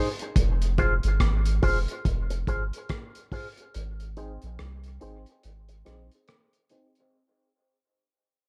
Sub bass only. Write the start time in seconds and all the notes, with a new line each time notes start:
0.36 F1
1.04 G1
1.21 G#1
1.63 F1
2.06 F1
2.48 G1
3.75 G#1
4.43 A#1
4.60 C2
5.03 G#1
5.45 G#1
5.87 A#1